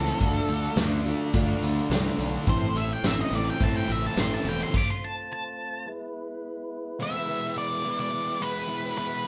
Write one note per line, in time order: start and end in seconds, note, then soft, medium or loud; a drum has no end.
0.00 0.10 C#2 medium
0.00 0.20 E3 medium
0.00 0.19 A3 medium
0.00 0.19 A3 soft
0.00 0.49 A3 medium
0.00 1.05 A3 medium
0.00 0.19 C4 medium
0.00 0.21 C4 medium
0.00 0.19 E4 medium
0.00 0.21 E4 medium
0.00 0.21 A4 medium
0.00 0.76 A4 medium
0.00 0.19 C5 medium
0.07 closed hi-hat medium
0.20 0.39 D2 medium
0.20 0.49 D3 medium
0.20 0.76 D3 medium
0.20 0.49 A3 medium
0.20 2.45 A3 medium
0.20 2.45 D4 medium
0.20 0.49 D4 medium
0.20 0.49 F4 medium
0.20 2.46 F4 medium
0.20 0.47 A4 medium
0.20 2.46 D5 medium
0.20 kick loud
0.20 closed hi-hat medium
0.48 0.66 D2 medium
0.48 1.06 A3 medium
0.48 0.76 D4 medium
0.48 0.77 F4 medium
0.48 0.77 A4 medium
0.48 closed hi-hat medium
0.63 closed hi-hat medium
0.76 1.12 D2 medium
0.76 2.18 D3 medium
0.76 1.05 A3 medium
0.76 1.05 D4 medium
0.76 1.05 F4 medium
0.76 1.03 A4 medium
0.76 snare loud
0.76 closed hi-hat medium
1.04 1.90 A3 medium
1.04 1.91 A3 medium
1.04 1.32 D4 medium
1.04 1.33 F4 medium
1.04 1.33 A4 medium
1.04 closed hi-hat medium
1.33 1.52 D2 medium
1.33 1.62 D3 medium
1.33 1.62 A3 medium
1.33 1.62 D4 medium
1.33 2.47 F4 medium
1.33 1.61 F4 loud
1.33 1.60 A4 loud
1.33 kick loud
1.33 closed hi-hat medium
1.61 1.80 D2 medium
1.61 2.48 D3 medium
1.61 2.47 D4 medium
1.61 1.89 D4 soft
1.61 1.90 F4 medium
1.61 1.90 A4 medium
1.61 closed hi-hat medium
1.76 closed hi-hat medium
1.89 2.08 C2 loud
1.89 2.18 A3 medium
1.89 3.32 A3 medium
1.89 2.19 D4 medium
1.89 2.19 F4 medium
1.89 2.17 A4 medium
1.89 snare loud
1.89 closed hi-hat medium
2.06 snare soft
2.18 2.36 B1 medium
2.18 2.47 D3 medium
2.18 2.47 D4 medium
2.18 2.48 F4 medium
2.18 2.47 A4 medium
2.18 closed hi-hat medium
2.46 2.65 A1 medium
2.46 2.75 A2 medium
2.46 3.89 A2 medium
2.46 2.75 E3 medium
2.46 4.71 A3 medium
2.46 2.76 A3 medium
2.46 4.71 C4 medium
2.46 2.76 C4 medium
2.46 4.71 E4 medium
2.46 2.76 E4 medium
2.46 2.74 A4 medium
2.46 4.71 C5 medium
2.46 2.76 C5 loud
2.46 kick loud
2.46 closed hi-hat medium
2.74 2.93 A1 medium
2.74 3.03 C4 soft
2.74 3.04 E4 soft
2.74 3.04 A4 soft
2.74 2.90 E5 loud
2.74 closed hi-hat medium
2.79 3.02 A3 soft
2.93 3.05 G5 medium
3.03 3.21 A1 medium
3.03 4.44 E3 medium
3.03 3.32 A3 medium
3.03 3.33 C4 medium
3.03 3.32 E4 medium
3.03 3.31 A4 medium
3.03 3.19 E5 medium
3.03 snare loud
3.03 closed hi-hat medium
3.21 3.33 D#5 medium
3.31 3.50 A1 medium
3.31 4.16 A3 medium
3.31 3.60 A3 soft
3.31 3.61 C4 medium
3.31 3.61 E4 medium
3.31 3.61 A4 medium
3.31 3.48 D5 medium
3.31 closed hi-hat medium
3.50 3.64 G5 loud
3.60 3.79 A1 loud
3.60 3.89 A2 medium
3.60 3.89 E3 medium
3.60 3.89 A3 medium
3.60 3.89 C4 medium
3.60 4.74 E4 medium
3.60 3.88 E4 medium
3.60 3.87 A4 medium
3.60 3.76 A5 medium
3.60 kick loud
3.60 closed hi-hat medium
3.77 3.92 G5 medium
3.88 4.07 A1 medium
3.88 4.74 E3 medium
3.88 4.16 A3 medium
3.88 4.74 C4 medium
3.88 4.17 C4 soft
3.88 4.17 E4 medium
3.88 4.17 A4 medium
3.88 4.04 E5 medium
3.88 closed hi-hat medium
4.07 4.19 A5 medium
4.16 4.35 A1 medium
4.16 4.46 A3 medium
4.16 4.74 A3 medium
4.16 4.46 C4 medium
4.16 4.45 E4 medium
4.16 4.44 A4 medium
4.16 4.34 C6 medium
4.16 snare loud
4.16 closed hi-hat medium
4.34 4.47 A5 medium
4.45 4.63 E1 medium
4.45 4.74 E3 medium
4.45 4.75 A3 medium
4.45 4.75 C4 medium
4.45 4.74 E4 medium
4.45 4.74 A4 medium
4.45 closed hi-hat medium
4.49 4.61 G5 medium
4.60 4.75 C6 medium
4.60 closed hi-hat medium
4.74 5.87 A3 medium
4.74 5.86 C4 medium
4.74 5.86 F4 medium
4.74 5.86 C5 medium
4.74 4.89 D6 medium
4.74 kick medium
4.74 crash loud
4.91 5.03 C6 medium
5.04 5.31 A5 loud
5.33 5.87 A5 loud
5.86 6.99 G#3 medium
5.86 6.99 B3 medium
5.86 6.99 E4 medium
5.86 6.99 B4 medium
6.99 7.27 E3 loud
6.99 7.28 G#3 loud
6.99 7.18 A3 medium
6.99 7.28 B3 loud
6.99 7.19 C4 medium
6.99 7.29 E4 medium
6.99 7.18 F4 medium
6.99 7.18 C5 medium
6.99 7.58 E5 loud
7.19 9.23 G#3 medium
7.19 9.24 B3 medium
7.19 9.24 E4 medium
7.19 9.24 B4 medium
7.28 7.56 E3 medium
7.28 7.56 G#3 medium
7.28 7.57 B3 loud
7.28 7.57 E4 loud
7.56 7.84 E3 medium
7.56 7.84 G#3 medium
7.56 7.85 B3 medium
7.56 7.85 E4 medium
7.56 7.99 D5 loud
7.84 8.12 E3 medium
7.84 8.12 G#3 medium
7.84 8.12 B3 loud
7.84 8.13 E4 medium
8.00 8.43 D5 loud
8.12 8.40 E3 medium
8.12 8.39 G#3 medium
8.12 8.40 B3 loud
8.12 8.41 E4 loud
8.40 8.68 E3 medium
8.40 8.67 G#3 medium
8.40 8.68 B3 medium
8.40 8.69 E4 medium
8.40 8.97 B4 loud
8.68 8.96 E3 loud
8.68 8.96 G#3 loud
8.68 8.97 B3 loud
8.68 8.98 E4 loud
8.97 9.25 E3 loud
8.97 9.24 G#3 medium
8.97 9.25 B3 loud
8.97 9.26 E4 loud
8.97 9.27 B4 medium